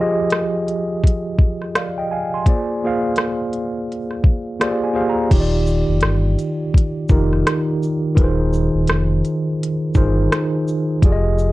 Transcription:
0.00 tine electric piano F3 F4 G4 G#4 D#5
0.30 cross-stick, closed hi-hat
0.68 closed hi-hat
1.03 kick, closed hi-hat
1.39 kick
1.62 cross-stick
1.75 tine electric piano D5 F5, cross-stick, closed hi-hat
1.98 tine electric piano D#5 G5
2.11 tine electric piano F5 G#5
2.34 tine electric piano G#5 C6
2.46 tine electric piano A#3 F4 G#4 C5 D5, kick, closed hi-hat
2.84 tine electric piano A#3 F4 G#4 C5 F5
3.16 cross-stick, closed hi-hat
3.53 closed hi-hat
3.92 closed hi-hat
4.11 cross-stick
4.24 kick
4.60 tine electric piano A#3 F4 G4 G#4 C5 D5 F5, cross-stick, closed hi-hat
4.84 tine electric piano G#5
4.93 tine electric piano A#3 F4 G4 G#4 C5 F5
5.09 tine electric piano A#5
5.31 sub bass D#1, tine electric piano D#3 D#4 F4 G4 C#5, kick, closed hi-hat, crash
5.41 tine electric piano D5
5.67 shaker
5.88 sub bass F1
6.01 sub bass G1, cross-stick, closed hi-hat
6.39 closed hi-hat, shaker
6.74 kick, closed hi-hat
7.09 sub bass F1, tine electric piano D#3 D#4 F4 G4 A#4, kick, shaker
7.33 cross-stick
7.47 cross-stick, closed hi-hat
7.83 shaker
8.15 sub bass D#1, tine electric piano D#3 D#4 F4 G#4 A#4 B4, kick, closed hi-hat
8.24 tine electric piano C5
8.53 shaker
8.74 sub bass D#1
8.87 sub bass F1, cross-stick, closed hi-hat
9.25 closed hi-hat, shaker
9.63 closed hi-hat
9.94 sub bass G1, tine electric piano D#3 D#4 F4 G#4 A#4 C5, kick, shaker
10.32 cross-stick, closed hi-hat
10.68 shaker
11.02 sub bass F1, tine electric piano F3 F4 G4 G#4 D5, kick, closed hi-hat
11.12 tine electric piano D#5
11.38 shaker

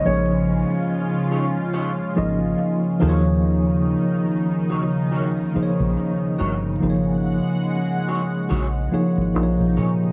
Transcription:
Already playing: analog synth pad C#3 G#3 C#4, tine electric piano F3 A#3 D#4 G#4 C5 C#5
0.04 fingered electric bass A#1, tine electric piano F3 A#3 D#4 G#4 C5, analog synth pad F4, grand piano C#5
0.13 tine electric piano C#5
1.31 clean electric guitar D#4 G#4 C#5
1.73 clean electric guitar D#4 G#4 C#5
2.15 fingered electric bass G#1, tine electric piano F3 A#3 D#4 G#4 D#5
2.59 muted clean electric guitar stroke
3.00 fingered electric bass D#2, analog synth pad C#3 D#3 D#4, tine electric piano F3 A#3 D#4 G#4 C5, clean electric guitar F#4 A#4 C#5
3.09 tine electric piano C#5
4.70 clean electric guitar F#4 A#4 C#5
5.11 clean electric guitar F#4 A#4 C#5
5.54 tine electric piano F3 A#3 D#4 G#4 C5, muted fingered electric bass stroke
5.63 tine electric piano C#5
5.80 fingered electric bass A#1
5.97 muted clean electric guitar stroke
6.38 fingered electric bass G1, clean electric guitar F#4 A#4 C#5
6.80 fingered electric bass G#1, tine electric piano F3 A#3 D#4 G#4 C5, analog synth pad G#3 F#5
6.90 tine electric piano C#5
8.08 clean electric guitar F#4 G#4 C#5
8.49 fingered electric bass A#1, clean electric guitar F#4 G#4 C#5
8.91 tine electric piano F3 A#3 D#4 G#4 C#5, muted fingered electric bass stroke
9.18 fingered electric bass G#1
9.34 fingered electric bass A#1, analog synth pad C3 D#4, tine electric piano F3 A#3 D#4 G#4 C5
9.43 tine electric piano C#5
9.60 fingered electric bass A#1
9.77 fingered electric bass A#2, clean electric guitar D#4 G#4 C#5

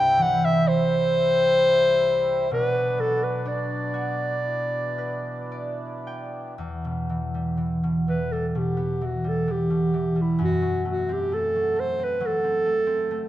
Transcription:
Already playing: harp C2 C3, accordion C3 G3 E4, clarinet G5
0.18 harp E3
0.22 clarinet F#5
0.45 clarinet E5
0.68 clarinet C5
2.51 harp B2, accordion B2 F#3 D4, clarinet B4
2.98 harp F#3, clarinet A4
3.23 clarinet B4
3.45 harp D4, clarinet D5
3.94 harp F#4
4.45 accordion E3
4.98 harp B4
5.52 harp D5
6.07 harp G5
6.58 harp E2
6.85 harp B2
7.09 harp E3
7.34 harp G3
7.57 harp E3
7.83 harp B2
8.08 harp E3, clarinet B4
8.32 harp G3, clarinet A4
8.48 clarinet A4
8.55 harp B2, clarinet G4
8.77 harp B3
9.01 harp E3, clarinet F#4
9.24 harp G3
9.28 clarinet A4
9.48 harp E3
9.52 clarinet G4
9.70 harp B2
9.94 harp E3
10.16 harp G3
10.21 clarinet E4
10.39 harp F#2
10.44 clarinet F#4
10.62 harp F#3
10.85 harp A3
10.90 clarinet F#4
11.09 harp C4
11.13 clarinet G4
11.32 harp A3, clarinet A4
11.56 harp F#3
11.76 harp A3, clarinet C5
11.99 harp C4
12.04 clarinet B4
12.21 harp F#3
12.26 clarinet A4
12.44 harp C4
12.66 harp A3
12.87 harp C4
13.11 harp A3

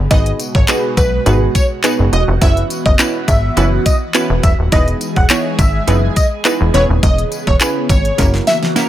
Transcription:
0.11 analog synth bass G#1, analog synth pad B2 G#3 F#4, synth stab B3 D#4 F#4 G#4 B4, digital synth lead D#5, kick, closed hi-hat, tambourine
0.26 closed hi-hat
0.40 closed hi-hat, tambourine
0.55 analog synth bass G#1, digital synth lead C#5, kick
0.68 synth stab B3 D#4 F#4 G#4 B4, clap, closed hi-hat, tambourine
0.97 analog synth bass B1, digital synth lead B4, kick, closed hi-hat, tambourine
1.26 analog synth bass G#1, synth stab B3 D#4 F#4 G#4 B4, closed hi-hat, tambourine
1.55 digital synth lead C#5, kick, closed hi-hat, tambourine
1.84 synth stab B3 D#4 F#4 G#4 B4, clap, closed hi-hat, tambourine
1.99 analog synth bass F#1
2.13 analog synth bass E1, digital synth lead D#5, closed hi-hat
2.28 analog synth bass F1
2.41 analog synth bass F#1, analog synth pad E3 B3, synth stab B3 C#4 E4 F#4 B4, digital synth lead E5, kick, closed hi-hat, tambourine
2.57 closed hi-hat
2.70 closed hi-hat, tambourine
2.86 analog synth bass F#1, digital synth lead D#5, kick
2.99 synth stab B3 C#4 E4 F#4 B4, clap, closed hi-hat, tambourine
3.28 analog synth bass G#1, digital synth lead E5, kick, closed hi-hat, tambourine
3.57 analog synth bass F#1, synth stab B3 C#4 E4 F#4 B4, closed hi-hat, tambourine
3.86 digital synth lead D#5, kick, closed hi-hat, tambourine
4.14 synth stab B3 C#4 E4 F#4 B4, clap, closed hi-hat, tambourine
4.30 analog synth bass E1
4.43 analog synth bass E1, digital synth lead E5, kick, closed hi-hat, tambourine
4.59 analog synth bass D#1
4.72 analog synth bass E1, analog synth pad E3 G#3 G#4, synth stab B3 D#4 E4 G#4 B4, digital synth lead D#5, kick, closed hi-hat, tambourine
4.88 closed hi-hat
5.01 closed hi-hat, tambourine
5.16 analog synth bass E1, digital synth lead F#5, kick
5.29 synth stab B3 D#4 E4 G#4 C#5, clap, closed hi-hat, tambourine
5.59 analog synth bass G#1, digital synth lead E5, kick, closed hi-hat, tambourine
5.87 analog synth bass F#1, synth stab B3 D#4 E4 G#4 B4, closed hi-hat, tambourine
6.16 digital synth lead D#5, kick, closed hi-hat, tambourine
6.45 synth stab B3 D#4 E4 G#4 B4, clap, closed hi-hat, tambourine
6.61 analog synth bass E1
6.74 analog synth bass E1, analog synth pad C#3 B3, synth stab B3 C#4 E4 G#4 B4, digital synth lead C#5, closed hi-hat, tambourine
6.89 analog synth bass D#1
7.03 analog synth bass E1, digital synth lead D#5, kick, closed hi-hat, tambourine
7.18 closed hi-hat
7.32 closed hi-hat, tambourine
7.47 analog synth bass E1, digital synth lead C#5, kick
7.60 synth stab B3 C#4 E4 G#4 B4, clap, closed hi-hat, tambourine
7.89 analog synth bass G#1, digital synth lead C#5, kick, closed hi-hat, tambourine
8.05 closed hi-hat
8.18 analog synth bass F#1, synth stab A#3 C#4 E4 F#4 A#4, kick, snare, closed hi-hat, tambourine
8.34 snare
8.47 digital synth lead E5, snare, closed hi-hat, tambourine
8.63 snare
8.76 synth stab A#3 C#4 E4 F#4 A#4, snare, closed hi-hat, tambourine

